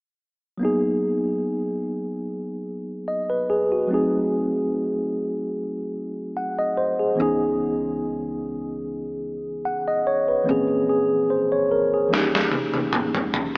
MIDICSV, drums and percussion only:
0, 0, Header, 1, 2, 480
1, 0, Start_track
1, 0, Key_signature, 5, "minor"
1, 0, Tempo, 821918
1, 349, Time_signature, 4, 2, 24, 8
1, 7927, End_track
2, 0, Start_track
2, 0, Title_t, "Drums"
2, 7088, Note_on_c, 9, 38, 46
2, 7146, Note_off_c, 9, 38, 0
2, 7212, Note_on_c, 9, 38, 44
2, 7271, Note_off_c, 9, 38, 0
2, 7309, Note_on_c, 9, 48, 55
2, 7367, Note_off_c, 9, 48, 0
2, 7438, Note_on_c, 9, 48, 54
2, 7497, Note_off_c, 9, 48, 0
2, 7549, Note_on_c, 9, 47, 69
2, 7608, Note_off_c, 9, 47, 0
2, 7677, Note_on_c, 9, 45, 59
2, 7736, Note_off_c, 9, 45, 0
2, 7790, Note_on_c, 9, 43, 78
2, 7848, Note_off_c, 9, 43, 0
2, 7927, End_track
0, 0, End_of_file